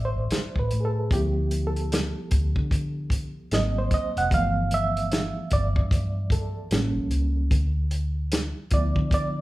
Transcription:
Already playing: A1 D5 E5 G5
0.05 C5
0.16 A1
0.31 muted fingered electric bass stroke, snare, closed hi-hat
0.56 A1 B4, kick
0.71 A2, closed hi-hat
0.80 G#4
0.85 A4
1.11 D2 F3 B3 E4 G4, kick, closed hi-hat
1.51 closed hi-hat
1.67 A4
1.76 closed hi-hat
1.92 snare, closed hi-hat
2.31 D2, kick, closed hi-hat
2.56 D3, kick
2.71 kick, closed hi-hat
3.10 kick, closed hi-hat
3.51 G#1 F#3 A#3 C4 D#5, snare, closed hi-hat
3.78 C5
3.91 D#5, kick, closed hi-hat
4.17 F1 F#5, closed hi-hat
4.31 G1 E3 F3 A3 B3 F5, kick, closed hi-hat
4.71 E5, closed hi-hat
4.97 closed hi-hat
5.12 snare, closed hi-hat
5.51 G1 D5, kick, closed hi-hat
5.76 G2, kick
5.91 kick, closed hi-hat
6.30 A4, kick, closed hi-hat
6.71 A1 G3 A#3 C#4, snare, closed hi-hat
6.96 A#1
7.10 C#2, closed hi-hat
7.51 D2, kick, closed hi-hat
7.91 closed hi-hat
8.32 snare, closed hi-hat
8.71 D2 F3 B3 E4 D5, kick, closed hi-hat
8.96 D3, kick
9.11 D5, kick, closed hi-hat

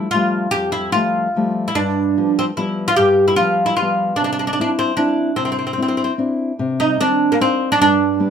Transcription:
Already playing: E4
0.11 F3 G3 A3 F4
0.51 F2 G4
0.72 E4
0.92 F3 G3 A3 F4
1.36 F3 G3 A3
1.68 E4
1.75 G2 D4
2.17 F3 G3 B3
2.39 C4
2.57 F3 G3 B3 E4
2.88 F4
2.96 G2 G4
3.28 E4
3.36 F3 G3 B3 F4
3.66 E4
3.77 F3 F4
3.81 G3 B3
4.16 C3 D4
4.24 D4
4.33 D4
4.39 D4
4.47 D4
4.53 D4
4.59 C4 D4 E4
4.79 C4
4.97 C4 D4 E4
5.36 C3 C4
5.45 C4
5.52 C4
5.58 C4
5.67 C4
5.73 C4
5.78 C4 D4 E4
5.82 C4
5.88 C4
5.97 C4
6.04 C4
6.18 C4 D4 E4
6.59 C3
6.80 D#4
7.00 D#3 C4 D4
7.32 A#3
7.40 C4 D4 D#4
7.72 D4
7.80 G2 D4
8.20 G3 B3 D4

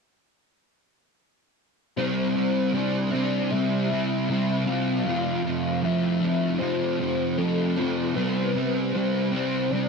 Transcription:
1.97 C3 G3 C4 C5
2.35 G3 C4
2.73 C3 G3 C4 D5
3.12 G3 C4
3.51 C3 G3 C4 E5
3.89 G3 C4
4.28 C3 G3 C4
4.66 C4 F5
4.70 G3
5.05 F2 C3 F3
5.44 C3 F3
5.82 F2 C3 F3 E5
6.20 F3
6.24 C3
6.58 F2 C3 F3 C5
6.99 C3 F3
7.38 F2 C3 F3 A4
7.76 C3 F3
8.15 C3 G3 C4 B4
8.54 G3 C4
8.93 C3 G3 C4 C5
9.31 G3 C4
9.71 C3 G3 C4 D5

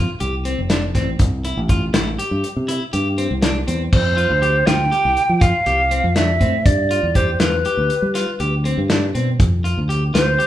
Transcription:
0.20 C2 G4, closed hi-hat
0.45 C4, closed hi-hat
0.59 F1
0.70 D4, snare, closed hi-hat
0.95 A1 C4, kick, snare, closed hi-hat
1.19 C2, kick, closed hi-hat
1.45 E4, closed hi-hat
1.57 A1
1.69 F4, kick, closed hi-hat
1.94 A1 E4, snare, closed hi-hat
2.19 G4, closed hi-hat
2.31 G2
2.44 closed hi-hat
2.56 C3
2.68 E4, closed hi-hat
2.93 G2 G4, closed hi-hat
3.18 C4, closed hi-hat
3.31 C2
3.42 D4, snare, closed hi-hat
3.67 E2 C4, closed hi-hat
3.93 F2 C5, kick, crash
4.17 F4, closed hi-hat
4.30 D2
4.42 G4, closed hi-hat
4.67 D2 F4 G5, snare, closed hi-hat
4.91 G4, closed hi-hat
5.05 C2
5.17 closed hi-hat
5.29 F3
5.41 F4 F5, kick, closed hi-hat
5.66 C2 G4, closed hi-hat
5.91 C4, closed hi-hat
6.04 F2
6.16 D4 E5, snare, closed hi-hat
6.41 A2 C4, kick, closed hi-hat
6.66 G2 D5, kick, closed hi-hat
6.91 F4, closed hi-hat
7.03 E2
7.15 G4 C5, kick, snare, closed hi-hat
7.40 E2 F4 B4, snare, closed hi-hat
7.65 G4, closed hi-hat
7.77 D2
7.90 closed hi-hat
8.02 G3
8.15 F4, snare, closed hi-hat
8.40 D2 G4, closed hi-hat
8.65 C4, closed hi-hat
8.78 G2
8.90 D4, snare, closed hi-hat
9.15 B2 C4, closed hi-hat
9.40 F2, kick, closed hi-hat
9.64 F4, closed hi-hat
9.78 D2
9.89 G4, closed hi-hat
10.14 D2 F4 C5, snare, closed hi-hat
10.39 G4, closed hi-hat

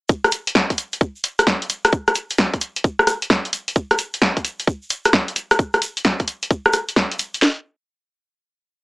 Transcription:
0.09 kick, shaker
0.24 cross-stick, closed hi-hat, shaker
0.32 closed hi-hat, shaker
0.47 closed hi-hat, shaker
0.55 kick, snare, shaker
0.70 kick, closed hi-hat, shaker
0.78 closed hi-hat, shaker
0.93 closed hi-hat, shaker
1.01 kick, shaker
1.16 shaker
1.24 closed hi-hat, shaker
1.39 cross-stick, closed hi-hat, shaker
1.47 kick, snare, shaker
1.62 closed hi-hat, shaker
1.70 closed hi-hat, shaker
1.85 cross-stick, closed hi-hat, shaker
1.92 kick, shaker
2.07 cross-stick, closed hi-hat, shaker
2.15 closed hi-hat, shaker
2.30 closed hi-hat, shaker
2.38 kick, snare, shaker
2.54 kick, closed hi-hat, shaker
2.61 closed hi-hat, shaker
2.76 closed hi-hat, shaker
2.84 kick, shaker
2.99 cross-stick, shaker
3.07 cross-stick, closed hi-hat, shaker
3.22 closed hi-hat, shaker
3.30 kick, snare, shaker
3.45 closed hi-hat, shaker
3.53 closed hi-hat, shaker
3.68 closed hi-hat, shaker
3.76 kick, shaker
3.91 cross-stick, closed hi-hat, shaker
3.98 closed hi-hat, shaker
4.14 closed hi-hat, shaker
4.22 kick, snare, shaker
4.37 kick, closed hi-hat, shaker
4.45 closed hi-hat, shaker
4.60 closed hi-hat, shaker
4.67 kick, shaker
4.82 shaker
4.90 closed hi-hat, shaker
5.05 cross-stick, closed hi-hat, shaker
5.13 kick, snare, shaker
5.28 closed hi-hat, shaker
5.36 closed hi-hat, shaker
5.51 cross-stick, closed hi-hat, shaker
5.59 kick, shaker
5.74 cross-stick, closed hi-hat, shaker
5.82 closed hi-hat, shaker
5.97 closed hi-hat, shaker
6.05 kick, snare, shaker
6.19 kick, closed hi-hat, shaker
6.28 closed hi-hat, shaker
6.43 closed hi-hat, shaker
6.51 kick, shaker
6.65 cross-stick, shaker
6.73 cross-stick, closed hi-hat, shaker
6.88 closed hi-hat, shaker
6.96 kick, snare, shaker
7.12 closed hi-hat, shaker
7.19 closed hi-hat, shaker
7.34 closed hi-hat, shaker
7.42 snare

